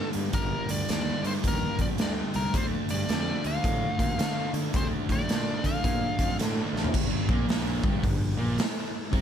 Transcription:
0.00 0.30 G2 medium
0.00 0.31 D3 medium
0.00 0.31 G3 medium
0.00 1.08 D4 medium
0.13 0.27 G2 medium
0.13 closed hi-hat medium
0.31 0.55 G1 medium
0.31 1.21 G2 medium
0.31 1.21 D3 medium
0.31 1.21 G3 medium
0.31 0.70 A#4 medium
0.31 kick loud
0.31 closed hi-hat medium
0.69 0.81 D2 medium
0.69 0.89 D5 medium
0.69 closed hi-hat medium
0.89 1.10 D#2 medium
0.89 1.26 D5 medium
0.89 snare medium
0.89 closed hi-hat medium
1.22 1.36 G2 medium
1.22 1.97 G2 medium
1.22 1.98 D3 medium
1.22 1.97 G3 medium
1.22 closed hi-hat medium
1.27 1.32 C5 medium
1.44 1.65 D#2 medium
1.44 1.79 A#4 medium
1.44 kick medium
1.44 closed hi-hat medium
1.79 1.91 A#1 medium
1.79 1.87 D5 medium
1.79 kick medium
1.79 closed hi-hat medium
1.98 2.21 D2 medium
1.98 2.53 G2 medium
1.98 2.53 D3 medium
1.98 2.54 G3 medium
1.98 2.11 D5 medium
1.98 snare loud
1.98 closed hi-hat medium
2.34 2.47 C2 medium
2.34 2.56 A#4 medium
2.34 closed hi-hat soft
2.54 2.75 D2 medium
2.54 3.45 D3 medium
2.54 3.43 A3 medium
2.54 3.42 D4 medium
2.54 2.64 C5 medium
2.54 kick loud
2.54 closed hi-hat medium
2.89 3.03 G2 medium
2.89 3.09 D5 medium
2.89 closed hi-hat medium
3.09 3.31 F2 medium
3.09 3.43 D5 loud
3.09 snare medium
3.09 closed hi-hat medium
3.43 3.57 D2 medium
3.43 4.16 D3 medium
3.43 4.17 A3 medium
3.43 4.19 D4 medium
3.43 4.52 F5 medium
3.43 closed hi-hat soft
3.64 3.85 A2 medium
3.64 kick medium
3.64 closed hi-hat medium
3.99 4.12 A#2 medium
3.99 kick medium
3.99 closed hi-hat medium
4.17 4.71 D3 medium
4.17 4.40 D3 medium
4.17 4.72 A3 medium
4.17 4.74 D4 medium
4.17 snare loud
4.17 closed hi-hat medium
4.53 4.66 D3 medium
4.53 closed hi-hat medium
4.72 4.95 D2 medium
4.72 5.61 D3 medium
4.72 5.62 A3 medium
4.72 5.62 D4 medium
4.72 kick loud
4.72 closed hi-hat medium
4.76 4.85 C5 medium
5.09 5.21 A2 medium
5.09 5.67 D5 medium
5.09 kick medium
5.09 closed hi-hat medium
5.29 5.51 A#2 medium
5.29 snare medium
5.29 closed hi-hat medium
5.64 5.76 D3 medium
5.64 6.38 D3 medium
5.64 6.39 A3 medium
5.64 6.38 D4 medium
5.64 6.36 F5 medium
5.64 kick medium
5.64 closed hi-hat medium
5.84 6.05 A#2 medium
5.84 kick medium
5.84 closed hi-hat medium
6.19 6.31 F2 medium
6.19 kick medium
6.19 closed hi-hat medium
6.39 6.60 A2 medium
6.39 6.93 D3 medium
6.39 6.94 A3 medium
6.39 6.94 D4 medium
6.39 snare medium
6.39 closed hi-hat medium
6.73 6.85 A1 medium
6.73 snare soft
6.84 floor tom medium
6.93 7.26 G1 medium
6.93 7.28 G2 medium
6.93 7.29 G3 loud
6.93 kick loud
6.93 crash loud
7.29 7.80 A#1 loud
7.29 7.83 A#2 medium
7.29 7.83 A#3 loud
7.29 kick loud
7.49 snare loud
7.49 open hi-hat medium
7.83 8.03 G1 loud
7.83 8.02 G2 medium
7.83 8.03 G3 loud
7.83 kick loud
8.03 8.36 G1 medium
8.03 8.32 G2 medium
8.03 kick medium
8.03 open hi-hat medium
8.37 8.57 A#1 medium
8.37 8.57 A#2 medium
8.37 8.58 A#3 medium
8.57 muted distorted electric guitar stroke medium
8.57 muted fingered electric bass stroke soft
8.57 snare loud
8.57 open hi-hat medium
9.11 9.21 C2 loud
9.11 9.21 C3 medium
9.11 9.21 C4 loud
9.11 kick loud
9.11 open hi-hat medium

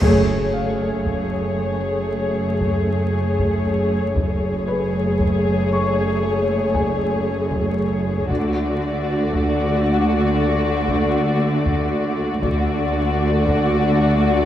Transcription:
0.01 4.12 F#1 medium
0.01 4.12 F#2 medium
0.01 4.12 A3 medium
0.01 4.12 G#4 medium
0.01 4.12 C#5 medium
0.01 taiko medium
0.01 impact soft
0.53 3.60 F5 soft
1.06 taiko medium
2.61 taiko medium
3.38 taiko medium
4.15 8.26 F#1 soft
4.15 8.26 F#2 soft
4.15 8.26 A3 soft
4.15 8.25 G#4 soft
4.15 8.26 C#5 soft
4.15 taiko medium
4.68 7.74 B4 soft
5.19 taiko medium
5.73 8.78 C#6 soft
6.74 9.81 G#5 soft
6.74 taiko medium
7.52 taiko medium
8.30 12.40 D2 soft
8.30 12.39 D3 soft
8.30 12.40 A3 medium
8.30 12.40 F#4 medium
8.30 12.40 D5 soft
8.30 taiko medium
9.33 taiko medium
10.88 taiko medium
11.66 taiko medium
12.43 14.45 D2 medium
12.43 14.45 D3 medium
12.43 14.45 A3 medium
12.43 14.45 F#4 medium
12.43 14.45 D5 medium
12.43 taiko medium
13.47 taiko medium

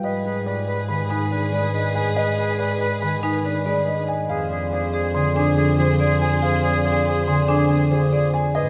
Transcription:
0.00 4.17 G#2 medium
0.00 4.04 G#4 medium
0.00 0.32 B4 medium
0.00 4.04 B4 medium
0.00 0.10 G5 medium
0.04 0.19 B4 soft
0.04 0.32 D#5 medium
0.25 2.37 D#4 medium
0.25 0.40 B4 soft
0.46 0.62 B4 soft
0.46 0.74 D5 medium
0.68 0.96 B4 medium
0.68 0.83 B4 medium
0.89 3.01 D#3 medium
0.89 1.04 B4 medium
0.89 1.17 B5 medium
1.10 1.38 D#4 medium
1.10 1.25 B4 medium
1.10 1.38 G#5 medium
1.31 3.43 D4 medium
1.31 1.47 B4 medium
1.52 3.64 G#3 medium
1.52 1.81 G#4 soft
1.52 1.68 B4 medium
1.52 1.81 D5 medium
1.74 1.89 B4 medium
1.74 2.02 D#5 medium
1.95 2.10 B4 medium
1.95 2.23 G#5 medium
2.16 2.31 B4 medium
2.16 2.45 B4 soft
2.16 2.45 D#5 medium
2.37 4.31 D#4 medium
2.37 2.53 B4 medium
2.59 2.74 B4 medium
2.59 2.87 D5 medium
2.80 2.95 B4 medium
2.80 3.08 B4 medium
3.02 4.31 D#3 medium
3.02 3.17 B4 medium
3.02 3.30 B5 medium
3.23 3.51 D#4 medium
3.23 3.38 B4 soft
3.23 3.51 G#5 medium
3.44 4.31 D4 medium
3.44 3.59 B4 soft
3.66 7.56 G#3 medium
3.66 3.93 G#4 medium
3.66 3.81 B4 soft
3.66 3.94 D5 medium
3.87 4.02 B4 soft
3.87 4.15 D#5 medium
4.08 4.36 G#5 medium
4.29 8.43 F2 medium
4.29 4.57 G#4 medium
4.29 4.45 G#4 soft
4.29 8.30 G#4 medium
4.29 8.30 C5 medium
4.29 4.57 F5 medium
4.51 6.62 D4 medium
4.51 4.66 G#4 soft
4.72 4.87 G#4 soft
4.72 5.00 D5 medium
4.94 5.21 G#4 medium
4.94 5.09 G#4 medium
5.14 7.27 D3 medium
5.14 5.30 G#4 medium
5.14 5.42 C6 medium
5.36 5.64 D4 medium
5.36 5.51 G#4 medium
5.36 5.64 G#5 medium
5.57 7.69 C4 medium
5.57 5.72 G#4 medium
5.78 7.90 F3 medium
5.78 6.06 G#4 medium
5.78 5.94 G#4 medium
5.78 6.06 C5 medium
6.00 6.15 G#4 medium
6.00 6.28 D5 medium
6.21 6.36 G#4 medium
6.21 6.49 G#5 medium
6.42 6.70 G#4 medium
6.42 6.58 G#4 medium
6.42 6.70 F5 medium
6.63 8.57 D4 medium
6.63 6.78 G#4 medium
6.84 7.00 G#4 medium
6.84 7.13 D5 medium
7.05 7.21 G#4 medium
7.05 7.34 G#4 medium
7.27 8.57 D3 medium
7.27 7.42 G#4 medium
7.27 7.55 C6 medium
7.48 7.76 D4 medium
7.48 7.64 G#4 medium
7.48 7.77 G#5 medium
7.70 8.57 C4 medium
7.70 7.85 G#4 medium
7.91 8.57 F3 medium
7.91 8.06 G#4 soft
7.91 8.19 G#4 medium
7.91 8.19 C5 medium
8.13 8.28 G#4 soft
8.13 8.40 D5 medium
8.34 8.62 G#5 medium
8.55 8.70 G#2 medium
8.55 8.70 G#4 medium
8.55 8.70 G#4 soft
8.55 8.70 B4 medium
8.55 8.70 D#5 medium

